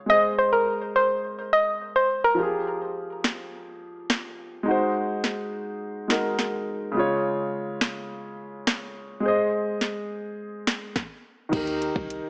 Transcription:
0.06 grand piano G#3 G#4, synth pluck D#5
0.11 grand piano C5 D#5
0.39 synth pluck C5
0.53 synth pluck A#4
0.96 synth pluck C5
1.53 synth pluck D#5
1.96 synth pluck C5
2.24 synth pluck A#4
2.35 grand piano F3 F4
2.39 grand piano G4 G#4
3.24 snare
4.10 snare
4.63 grand piano G#3 D#4
4.68 grand piano F#4 C5
5.24 snare
6.08 grand piano G#3 D#4 F#4 A#4, snare
6.39 snare
6.92 grand piano C#3 G#3
6.97 grand piano F4 C#5
7.81 snare
8.67 snare
9.20 grand piano G#3 G#4
9.25 grand piano C5 D#5
9.81 snare
10.67 snare
10.96 kick, snare
11.49 808-style bass D#2, grand piano D#3 D#4, kick, closed hi-hat, crash
11.54 grand piano G4 A#4
11.67 closed hi-hat
11.82 closed hi-hat
11.96 808-style bass C2, kick
12.10 closed hi-hat

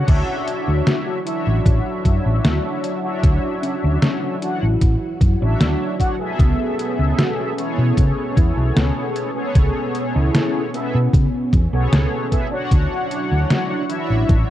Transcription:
Already playing: analog polysynth F#5
0.06 fingered electric bass D2, string machine F#3 E4, analog polysynth D4 F#4 C#5 E5, kick, closed hi-hat, crash
0.48 closed hi-hat
0.68 fingered electric bass D2
0.86 soft synth lead F#4, snare, closed hi-hat
1.06 soft synth lead F#4
1.24 analog polysynth D4 F#4 C#5 E5, soft synth lead E4, closed hi-hat
1.47 fingered electric bass A1
1.66 fingered electric bass A1, kick, closed hi-hat
2.05 fingered electric bass F#2, kick, closed hi-hat
2.26 fingered electric bass A1
2.45 fingered electric bass D2, snare, closed hi-hat
2.84 closed hi-hat
3.03 analog polysynth D4 F#4 C#5 E5
3.23 fingered electric bass D2, string machine F#4, kick, closed hi-hat
3.62 soft synth lead C#4, closed hi-hat
3.83 fingered electric bass D2, soft synth lead C#4
4.02 soft synth lead C#4, snare, closed hi-hat
4.23 soft synth lead C#4
4.41 analog polysynth D4 F#4 C#5 F#5, soft synth lead E4, closed hi-hat
4.63 fingered electric bass A1
4.81 fingered electric bass A1, kick, closed hi-hat
5.21 fingered electric bass F#2, kick, closed hi-hat
5.40 fingered electric bass A1, analog polysynth D4 F#4 C#5 E5
5.60 fingered electric bass D2, snare, closed hi-hat
5.99 analog polysynth D4 F#4 C#5 F#5, kick, closed hi-hat
6.18 analog polysynth B3 G#4 A4 E5
6.39 fingered electric bass C#2, string machine B2 C#4, kick, closed hi-hat
6.79 closed hi-hat
6.99 fingered electric bass C#2
7.18 soft synth lead F#4, snare, closed hi-hat
7.39 soft synth lead F#4
7.56 analog polysynth B3 G#4 A4 C#5, soft synth lead E4, closed hi-hat
7.78 fingered electric bass B2
7.97 fingered electric bass C#3, kick, closed hi-hat
8.37 fingered electric bass E2, soft synth lead E4, kick, closed hi-hat
8.57 fingered electric bass B1
8.76 fingered electric bass C#2, snare, closed hi-hat
9.16 closed hi-hat
9.35 analog polysynth B3 G#4 A4 C#5
9.55 fingered electric bass C#2, kick, closed hi-hat
9.95 closed hi-hat
10.15 fingered electric bass C#2, soft synth lead E4
10.35 snare, closed hi-hat
10.73 analog polysynth B3 G#4 A4 E5, soft synth lead B3, closed hi-hat
10.94 fingered electric bass B2
11.13 fingered electric bass C#3, kick, closed hi-hat
11.53 fingered electric bass E2, kick, closed hi-hat
11.72 fingered electric bass B1, analog polysynth B3 G#4 A4 C#5
11.92 fingered electric bass C#2, snare, closed hi-hat
12.31 analog polysynth B3 G#4 A4 E5, kick, closed hi-hat
12.51 analog polysynth D4 F#4 C#5 F#5
12.71 fingered electric bass D2, string machine F#3 E4, kick, closed hi-hat
13.11 closed hi-hat
13.31 fingered electric bass D2
13.50 soft synth lead F#4, snare, closed hi-hat
13.70 soft synth lead F#4
13.88 analog polysynth D4 F#4 C#5 E5, soft synth lead E4, closed hi-hat
14.10 fingered electric bass A1
14.29 fingered electric bass A1, kick, closed hi-hat

